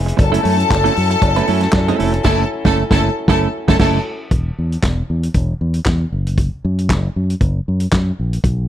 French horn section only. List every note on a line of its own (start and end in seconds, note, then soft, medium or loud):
0.00 0.14 C#3 medium
0.00 0.15 E3 medium
0.00 0.15 G#3 medium
0.00 0.14 B3 medium
0.00 0.14 D#4 medium
0.18 4.27 F#3 medium
0.18 4.27 C#4 medium
0.18 4.27 E4 medium
0.18 4.27 F#4 medium
0.18 4.27 A4 medium